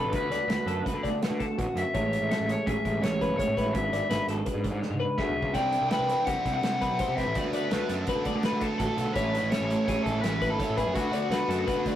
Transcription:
Already playing: C3 E3 G3 C4 D4 A4 B4
0.04 A1
0.13 D2 B3 F#4 B4, kick, closed hi-hat
0.31 D2 F#4 D5, snare, closed hi-hat
0.48 D2 F#4 B4, snare, closed hi-hat
0.66 F#2 D3 B3 A4, closed hi-hat
0.85 F#4 B4, kick, snare, closed hi-hat
0.94 D3
1.03 A2 B3 D5, kick, snare, closed hi-hat
1.11 D3
1.22 F#4 B4, snare, closed hi-hat
1.30 D3
1.40 A4, kick, snare, closed hi-hat
1.57 A1 D2 B3 F#4, kick, closed hi-hat
1.76 F#2 F#4 E5, closed hi-hat
1.93 A1 A2 G#3 C#4 E4 C#5, kick, closed hi-hat
2.13 E4, closed hi-hat
2.21 A1
2.31 C#4 A4, snare, closed hi-hat
2.40 A1
2.48 E3 G#3 C#5, snare, closed hi-hat
2.67 A1 C#4 G#4 E5, kick, closed hi-hat
2.84 A1 E2 G#3, kick, closed hi-hat
3.01 A1 C#4 C#5, snare, closed hi-hat
3.21 B4, kick, snare, closed hi-hat
3.29 G#1
3.38 A2 G#3 C#4 E4 C#5, kick, snare, closed hi-hat
3.47 A2
3.57 E4 B4, kick, snare, closed hi-hat
3.65 A1
3.72 G#1 G#2 B3 D4 F#4 E5, kick, closed hi-hat
3.91 G#1 F#4 D5, snare, closed hi-hat
4.08 G#1 D4 B4, snare, closed hi-hat
4.27 G#1 G#3 B3 A4, snare, closed hi-hat
4.45 D4 B4, kick, closed hi-hat
4.54 G#2
4.63 G#2 B3 D5, kick, closed hi-hat
4.71 G#2
4.81 D4 C#5, snare
4.90 G#2, high tom
5.00 B4
5.17 D2 G#2 B3 D4 F#4 G#4 E5, kick, snare
5.29 floor tom
5.36 C#2 F#4
5.42 kick
5.53 C2 C3 G3 C4 D4 E4 D5 G5, kick, closed hi-hat
5.72 D4, closed hi-hat
5.81 C2
5.89 C3 G3 C4 E4 B4 G5, snare, closed hi-hat
5.99 C2
6.08 E3 G3 C4 E4, snare, closed hi-hat
6.26 C2 C3 G3 C4 G4 F#5, kick, closed hi-hat
6.30 E4
6.44 C2 C3, kick, snare, closed hi-hat
6.54 F#5
6.63 C2 C3 G3 C4 E4, snare, closed hi-hat
6.81 G3 C4 E4 B4, kick, closed hi-hat
6.90 B1
6.99 B2 C3 G3 C4 E4 C5, kick, closed hi-hat
7.08 C3
7.16 C3 B4 E5, kick, snare, closed hi-hat
7.26 A1
7.35 D2 D3 F#3 A3 B3 D4 F#4 D5, kick, closed hi-hat
7.53 D2 F#4 B4 D5, closed hi-hat
7.71 D2 D3 F#3 A3 D4 F#4 B4, snare, closed hi-hat
7.88 F#2 D3 A3 B3 D4 A4, snare, closed hi-hat
7.92 F#3
8.06 D3 F#3 A3 D4 F#4 B4, kick, closed hi-hat
8.16 D3
8.25 A2 B3 D5, kick, closed hi-hat
8.36 D3
8.41 D3 F#3 A3 D4 F#4 B4, snare, closed hi-hat
8.52 D3
8.60 F#3 A3 D4 A4, kick, closed hi-hat
8.78 A1 D2 D3 F#3 A3 B3 D4 F#4 A4, kick, snare, closed hi-hat
8.97 B1 F#4, closed hi-hat
9.13 A1 A2 E3 A3 C#4 E4 B4 C#5, kick, closed hi-hat
9.32 D4, snare, closed hi-hat
9.42 A1 E4
9.51 E3 A3 C#4 E4 A4 C#5, snare, closed hi-hat
9.60 A1
9.68 E3 A3 C#4 E4, closed hi-hat
9.86 A1 A2 E3 A3 C#4 E4 G#4 C#5, kick, closed hi-hat
10.03 A1 E2 A3 A4, kick, closed hi-hat
10.20 E3 A3 C#4 B4, closed hi-hat
10.24 A1 C#4 E4, snare
10.40 A3 C#4 E4 B4, kick, closed hi-hat
10.50 G#1 A4
10.57 A2 E3 A3 C#4 E4 C#5, kick, snare, closed hi-hat
10.69 A2
10.76 E4 G#4 B4, kick, closed hi-hat
10.87 F#2
10.93 D2 D3 A3 B3 D4 F#4, kick, closed hi-hat
11.12 D2 B3 D5, closed hi-hat
11.30 D2 D3 A3 B3 D4 F#4 B4, snare, closed hi-hat
11.48 F#2 D3 A3 B3 D4 F#4 A4, closed hi-hat
11.65 D3 A3 B3 D4 F#4 B4, kick, snare, closed hi-hat
11.76 D3
11.85 A2 B3 D5, kick, closed hi-hat

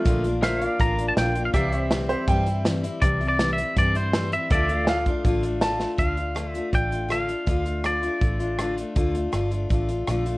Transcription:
Already playing: A3 F4
0.05 A#1 A#2 D3 A#3 D4 F4, kick, closed hi-hat
0.24 A#3 D4 F4, closed hi-hat
0.42 D3 A#3 D4 F4 A#4 C5 E5 F5, snare, closed hi-hat
0.61 A#3 D4 F4 F5, closed hi-hat
0.68 D5
0.79 A1 A#2 D3 A#3 D4 F4 A#5, kick, closed hi-hat
0.98 A#3 D4 F4, closed hi-hat
1.08 A5
1.16 A#1 D3 A#3 D4 F4 G5, snare, closed hi-hat
1.35 A#3 D4 F4, closed hi-hat
1.45 F5
1.53 C2 C3 E3 G3 C4 E4 G4 D5 E5 F5, kick, closed hi-hat
1.72 G3 C4 E4, closed hi-hat
1.77 C5 E5
1.91 E3 G3 C4 E4, snare, closed hi-hat
2.09 G3 C4 E4 C5, closed hi-hat
2.28 G2 C3 E3 G3 C4 E4 G5, kick, closed hi-hat
2.46 G3 C4 E4, closed hi-hat
2.65 E3 G3 C4 E4, snare, closed hi-hat
2.84 G3 C4 E4, closed hi-hat
3.02 C2 C3 E3 G3 C4 E4 D5, kick, closed hi-hat
3.20 G3 C4 E4, closed hi-hat
3.29 D5
3.39 E3 G3 C4 E4, snare, closed hi-hat
3.53 E5
3.58 G3 C4 E4, closed hi-hat
3.76 G2 C3 E3 G3 C4 E4 D5, kick, closed hi-hat
3.95 G3 C4 E4 C5, closed hi-hat
4.13 E3 G3 C4 E4, snare, closed hi-hat
4.32 G3 C4 E4 E5, closed hi-hat
4.50 D2 D3 A3 D4 F4 A4 D5 E5, kick, closed hi-hat
4.69 A3 D4 F4, closed hi-hat
4.73 F5
4.85 D3 E5, snare, closed hi-hat
4.89 A3 D4 F4 F5
5.06 A3 D4 F4, kick, closed hi-hat
5.25 A1 D3 A3 D4 F4, kick, closed hi-hat
5.43 A3 D4 F4, closed hi-hat
5.61 D3 A3 D4 F4 A5, snare, closed hi-hat
5.79 A3 D4 F4, snare
5.98 D2 D3 A3 D4 F4 F5, kick, closed hi-hat
6.17 A3 D4 F4, closed hi-hat
6.35 D3 A3 D4 F4, cross-stick, closed hi-hat
6.48 E5
6.54 A3 D4 F4, closed hi-hat
6.72 A1 D3 A3 D4 F4 G5, kick, closed hi-hat
6.91 A3 D4 F4, closed hi-hat
7.09 D3 A3 D4 F4 F5, cross-stick, closed hi-hat
7.28 A3 D4 F4, closed hi-hat
7.46 D2 D3 A3 D4 F4, kick, closed hi-hat
7.65 A3 D4 F4, closed hi-hat
7.84 D3 A3 D4 F4 D5, cross-stick, closed hi-hat
8.02 A3 D4 F4, closed hi-hat
8.21 A1 D3 A3 D4 F4, kick, closed hi-hat
8.39 A3 D4 F4, closed hi-hat
8.58 D3 A3 D4 F4, cross-stick, closed hi-hat
8.77 A3 D4 F4, closed hi-hat
8.95 D2 D3 A3 D4 F4, kick, closed hi-hat
9.15 A3 D4 F4, closed hi-hat
9.32 G1 D3 A3 D4 F4, cross-stick, closed hi-hat
9.51 A3 D4 F4, closed hi-hat
9.69 A1 D3 A3 D4 F4, kick, closed hi-hat
9.89 A3 D4 F4, closed hi-hat
10.07 A#1 D3 A3 D4 F4, cross-stick, closed hi-hat
10.25 A3 D4 F4, closed hi-hat

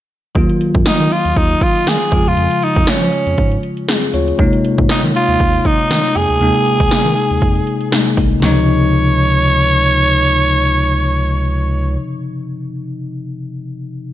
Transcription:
0.35 D#2 D#3 F#3 A#3 F4, kick, closed hi-hat
0.49 closed hi-hat
0.61 closed hi-hat
0.74 F#2, kick, closed hi-hat
0.86 D#3 D#4, snare, closed hi-hat
1.00 D#3, closed hi-hat
1.11 F4, closed hi-hat
1.25 D#2, closed hi-hat
1.36 D#2 D#4, kick, closed hi-hat
1.50 closed hi-hat
1.61 F4, kick, closed hi-hat
1.75 closed hi-hat
1.87 D#3 G#4, snare, closed hi-hat
2.01 closed hi-hat
2.11 F2 C#3 F3 G#3 F4, kick, closed hi-hat
2.26 E2 F4, closed hi-hat
2.37 F2, closed hi-hat
2.51 closed hi-hat
2.62 D#4, closed hi-hat
2.76 F2, kick, closed hi-hat
2.87 F3 C#4, snare, closed hi-hat
3.01 F3, closed hi-hat
3.13 closed hi-hat
3.27 F2, closed hi-hat
3.38 G#2, kick, closed hi-hat
3.52 closed hi-hat
3.63 closed hi-hat
3.77 closed hi-hat
3.88 C4 G#4, snare, closed hi-hat
4.02 closed hi-hat
4.14 D2 F4 C#5, closed hi-hat
4.28 closed hi-hat
4.38 D#2 C3 G#3 A#3 D#4, kick, closed hi-hat
4.53 closed hi-hat
4.65 closed hi-hat
4.78 G#2, kick, closed hi-hat
4.89 D#3 D#4, snare, closed hi-hat
5.04 D#3, closed hi-hat
5.15 F4, closed hi-hat
5.28 D#2, closed hi-hat
5.40 D#2, kick, closed hi-hat
5.54 closed hi-hat
5.65 D#4, kick, closed hi-hat
5.79 closed hi-hat
5.90 D#3, snare, closed hi-hat
6.05 closed hi-hat
6.16 F2 G#4, closed hi-hat
6.30 D2, closed hi-hat
6.40 D#2 C3 G#3 A#3 D#4, closed hi-hat
6.55 closed hi-hat
6.66 closed hi-hat
6.80 D#2, kick, closed hi-hat
6.91 D#3, snare, closed hi-hat
7.05 D#3, closed hi-hat
7.17 closed hi-hat
7.31 D#2, closed hi-hat
7.42 F2, kick, closed hi-hat
7.55 closed hi-hat
7.67 closed hi-hat
7.81 closed hi-hat
7.91 C3 G#3 A#3 D#4, snare, closed hi-hat
8.06 closed hi-hat
8.17 C2, kick, open hi-hat
8.31 closed hi-hat
8.40 C#2 C3 C#3 F3 C#5, snare, open hi-hat
8.45 D#4

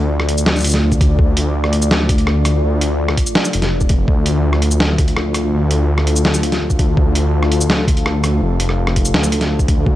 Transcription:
Already playing: D2 A3 F4 D5
0.20 cross-stick
0.29 closed hi-hat
0.38 shaker
0.46 snare
0.56 shaker
0.58 shaker
0.60 shaker
0.62 closed hi-hat, shaker
0.64 shaker
0.67 shaker
0.69 shaker
0.71 snare, closed hi-hat, shaker
0.83 D2
0.92 kick, shaker
1.01 kick, closed hi-hat
1.19 D2, kick
1.37 closed hi-hat
1.64 cross-stick
1.73 closed hi-hat
1.82 shaker
1.91 snare
2.09 kick, closed hi-hat
2.18 closed hi-hat
2.27 D2, cross-stick
2.45 cross-stick, closed hi-hat, shaker
2.64 D2
2.81 closed hi-hat
3.09 cross-stick
3.17 kick, closed hi-hat
3.26 shaker
3.35 snare
3.45 shaker
3.53 F1, closed hi-hat
3.62 snare, closed hi-hat
3.80 kick, shaker
3.89 kick, closed hi-hat
4.08 D2 A4, kick
4.26 closed hi-hat
4.53 cross-stick
4.62 closed hi-hat
4.71 shaker
4.80 snare
4.98 kick, closed hi-hat
5.08 closed hi-hat
5.16 D2, cross-stick
5.34 cross-stick, closed hi-hat, shaker
5.53 D2
5.71 closed hi-hat
5.98 cross-stick
6.07 closed hi-hat
6.16 shaker
6.25 snare
6.34 shaker
6.43 closed hi-hat
6.52 snare, closed hi-hat
6.62 D2
6.70 kick, shaker
6.79 kick, closed hi-hat
6.97 D2, kick
7.15 closed hi-hat
7.43 cross-stick
7.52 closed hi-hat
7.61 shaker
7.70 snare
7.88 kick, closed hi-hat
7.97 closed hi-hat
8.06 D2, cross-stick
8.24 cross-stick, closed hi-hat, shaker
8.42 F1
8.60 closed hi-hat
8.69 cross-stick
8.87 cross-stick
8.96 kick, closed hi-hat
9.05 shaker
9.14 D2, snare
9.23 shaker
9.32 closed hi-hat
9.41 snare, closed hi-hat
9.59 kick, shaker
9.68 kick, closed hi-hat
9.86 D2, kick

